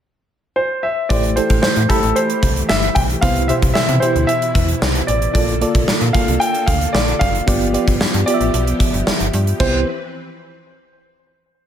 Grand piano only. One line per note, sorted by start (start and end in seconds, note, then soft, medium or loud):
0.56 0.84 C5 medium
0.83 1.11 E5 medium
1.09 1.37 D5 medium
1.36 1.61 C5 medium
1.62 1.90 C5 medium
1.89 2.17 A4 medium
2.16 2.71 C5 medium
2.69 2.96 E5 loud
2.95 3.01 G5 medium
3.21 3.49 F5 loud
3.48 3.54 E5 medium
3.74 4.02 E5 medium
4.00 4.29 C5 medium
4.27 5.10 E5 medium
5.07 5.32 D5 medium
5.34 5.84 D5 medium
6.13 6.41 F5 medium
6.40 6.68 G5 loud
6.66 6.94 F5 medium
6.93 7.18 D5 medium
7.19 8.22 F5 loud
8.26 9.29 D5 medium
9.60 9.85 C5 medium